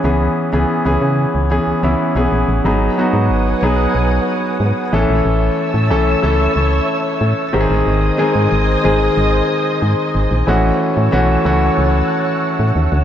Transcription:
<<
  \new Staff \with { instrumentName = "String machine" } { \time 4/4 \key gis \phrygian \tempo 4 = 92 r1 | <b' fis'' gis'' dis'''>2.~ <b' fis'' gis'' dis'''>8 <cis'' e'' a'' e'''>8~ | <cis'' e'' a'' e'''>2.~ <cis'' e'' a'' e'''>8 <bis' dis'' gis'' dis'''>8~ | <bis' dis'' gis'' dis'''>1 |
<cis'' fis'' a'' e'''>1 | }
  \new Staff \with { instrumentName = "Grand piano" } { \time 4/4 \key gis \phrygian <e b cis' gis'>8. <e b cis' gis'>8 <e b cis' gis'>4 <e b cis' gis'>8 <e b cis' e'>8 <e b cis' gis'>8. | <fis b dis' gis'>8 <fis b dis' fis'>4 <fis b dis' gis'>4.~ <fis b dis' gis'>16 r16 <e a cis' a'>8~ | <e a cis' a'>8. r16 <e a cis' a'>8 <e a cis' a'>4.~ <e a cis' a'>16 r16 <dis gis bis g' gis'>8~ | <dis gis bis g' gis'>8 <dis gis bis gis'>4 <dis gis bis gis'>4.~ <dis gis bis gis'>16 r8. |
<e a cis' fis'>4 <e a cis' fis'>8 <e a cis' fis'>4.~ <e a cis' fis'>16 r8. | }
  \new Staff \with { instrumentName = "FM bass" } { \clef bass \time 4/4 \key gis \phrygian cis,8 r16 cis,16 r16 cis,16 cis8 cis,8 cis,16 cis,16 r16 b,,16 ais,,16 a,,16 | gis,,8 r16 gis,16 gis,,8 b,,8 b,,8 r8 gis,16 r16 a,,16 ais,,16 | a,,8 r16 a,16 b,,8 cis,8 cis,8 r8 a,16 r16 gis,,16 a,,16 | gis,,8 r16 gis,16 gis,,8 gis,,8 gis,,8 r8 gis,16 r16 gis,,16 ais,,16 |
a,,8 r16 a,16 b,,8 cis,8 cis,8 r8. a,16 dis,16 d,16 | }
>>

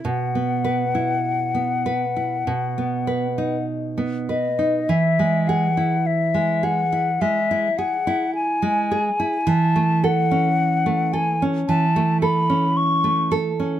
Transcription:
<<
  \new Staff \with { instrumentName = "Flute" } { \time 4/4 \key e \major \tempo 4 = 52 fis''2. r8 dis''8 | e''8 fis''8 e''8 fis''8 e''8 fis''8 gis''4 | a''8 fis''4 gis''8 a''8 b''8 cis'''8 r8 | }
  \new Staff \with { instrumentName = "Nylon-string guitar" } { \time 4/4 \key e \major b,16 b16 b'16 e'8 b16 b'16 e'16 b,16 b16 b'16 dis'8 b16 b'16 dis'16 | e16 gis16 gis'16 e'8 gis16 gis'16 e'16 gis16 e'16 gis'16 e'8 gis16 gis'16 e'16 | e16 a16 a'16 cis'8 a16 a'16 cis'16 e16 a16 a'16 cis'8 a16 a'16 cis'16 | }
>>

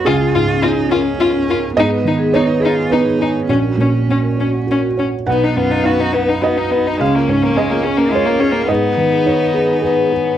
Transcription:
<<
  \new Staff \with { instrumentName = "Vibraphone" } { \time 3/4 \key gis \dorian \tempo 4 = 105 cis'16 eis'16 r16 cis'16 gis'16 eis'16 cis'16 ais'16 eis'16 cis'16 ais'16 r16 | gis'16 b'16 r16 gis'16 dis''16 b'16 gis'16 gis''16 b'16 gis'16 gis''16 r16 | fis'16 ais'16 r16 fis'16 cis''16 ais'16 fis'16 fis''16 ais'16 fis'16 fis''16 r16 | b'16 dis''16 r16 b'16 fis''16 r16 b'16 b''16 r16 b'16 b''16 r16 |
cis'16 eis'16 r16 cis'16 gis'16 eis'16 cis'16 ais'16 eis'16 cis'16 ais'16 r16 | gis'16 r8 gis'16 r16 b'16 gis'16 gis''16 b'16 gis'16 gis''16 r16 | }
  \new Staff \with { instrumentName = "Felt piano" } { \time 3/4 \key gis \dorian << { gis'2~ gis'8 r8 | dis''4 cis''4 b'4 | fis'2 r4 | fis''4 eis''4 dis''4 |
eis''4 dis''4 cis''4 | dis''4 cis''8 b'8 gis'4 | } \\ { cis,8 gis,8 cis'8 ais'8 eis'8 ais'8 | gis,8 dis8 b8 gis'8 b8 gis'8 | ais,,8 ais,8 cis'8 cis''8 fis'8 cis''8 | b,,8 fis,8 dis'8 b'8 fis'8 b'8 |
cis,8 gis,8 cis'8 gis'8 ais'8 gis'8 | gis,8 dis8 dis'8 gis'8 b'8 gis'8 | } >> }
  \new Staff \with { instrumentName = "Cello" } { \time 3/4 \key gis \dorian eis'8 eis'8 dis'8 cis'4. | b4 dis'8 eis'8 dis'4 | cis'2~ cis'8 r8 | dis'8 eis'8 fis'8 dis'8 dis'4 |
cis'2 eis'4 | dis'2. | }
  \new Staff \with { instrumentName = "Violin" } { \time 3/4 \key gis \dorian eis'8 eis'8 eis'8 eis'8 eis'8 eis'8 | dis'8 dis'8 dis'8 dis'8 dis'8 dis'8 | cis'8 cis'8 cis'8 cis'8 cis'8 cis'8 | b16 dis'16 b16 dis'16 b16 dis'16 b16 dis'16 b16 dis'16 b16 dis'16 |
gis16 ais16 cis'16 ais16 gis16 ais16 cis'16 ais16 gis16 ais16 cis'16 ais16 | b2 b4 | }
>>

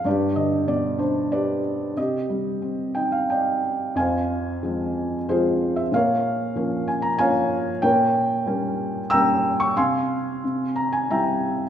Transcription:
<<
  \new Staff \with { instrumentName = "Felt piano" } { \time 3/4 \key c \minor \tempo 4 = 93 << { d''8 ees''8 d''8 c''8 d''4 | ees''4. g''16 f''16 g''4 | \key f \minor aes''2 c''8. e''16 | f''4. aes''16 bes''16 aes''4 |
g''2 e'''8. des'''16 | c'''4. bes''16 aes''16 bes''4 | } \\ { <g' b'>4. r8 <g' b'>4 | g'2 <d'' ees''>4 | <c'' f''>2 <f' aes'>4 | <bes' des''>4. r8 <des'' f''>4 |
<bes' des''>2 <g'' bes''>4 | <f'' aes''>4. r8 <e'' g''>4 | } >> }
  \new Staff \with { instrumentName = "Felt piano" } { \clef bass \time 3/4 \key c \minor g,8 d8 b,8 d'4. | c8 g8 c'8 ees'4. | \key f \minor f,4 <f aes c'>4 <f aes c'>4 | bes,4 <f bes des'>4 <f bes des'>4 |
bes,4 <g bes des'>4 <g bes des'>4 | c4 c4 <g c' e'>4 | }
>>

